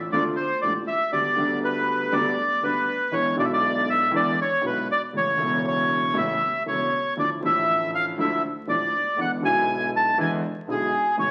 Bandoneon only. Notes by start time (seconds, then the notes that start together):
0.12 D5
0.36 C5
0.62 D5
0.88 E5
1.12 D5
1.64 B4
2.13 D5
2.63 B4
3.13 C#5
3.39 D5
3.45 E5
3.53 D5
3.90 E5
4.16 D5
4.41 C#5
4.66 B4
4.91 D5
5.17 C#5
5.67 C#5
6.17 E5
6.68 C#5
7.19 D5
7.46 E5
7.95 F5
8.20 E5
8.69 D5
9.21 F#5
9.45 G#5
9.96 A5
10.21 G#5
10.71 G#4
11.19 C#5